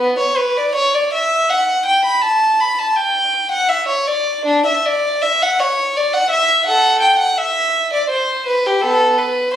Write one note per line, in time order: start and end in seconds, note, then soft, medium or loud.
0.00 0.18 B3 medium
0.19 0.37 C#5 medium
0.37 0.56 B4 medium
0.57 0.76 D5 medium
0.75 0.94 C#5 medium
0.94 1.13 D5 medium
1.13 1.50 E5 medium
1.49 1.87 F#5 medium
1.86 2.05 G5 medium
2.05 2.23 B5 medium
2.21 2.59 A5 medium
2.60 2.79 B5 medium
2.78 2.97 A5 medium
2.96 3.52 G5 medium
3.51 3.70 F#5 medium
3.69 3.88 E5 medium
3.88 4.07 C#5 medium
4.07 4.47 D5 medium
4.46 4.66 D4 medium
4.66 4.86 E5 medium
4.85 5.23 D5 medium
5.22 5.41 E5 medium
5.42 5.60 F#5 medium
5.60 5.95 C#5 medium
5.96 6.13 D5 medium
6.13 6.30 F#5 medium
6.30 6.65 E5 medium
6.66 7.00 A4 medium
6.66 7.01 F#5 medium
7.01 7.19 G5 medium
7.19 7.37 F#5 medium
7.38 7.92 E5 loud
7.93 8.10 D5 medium
8.09 8.45 C5 medium
8.46 8.63 B4 medium
8.66 8.82 G4 medium
8.81 9.14 B3 medium
8.81 9.16 A4 medium
9.17 9.53 B4 medium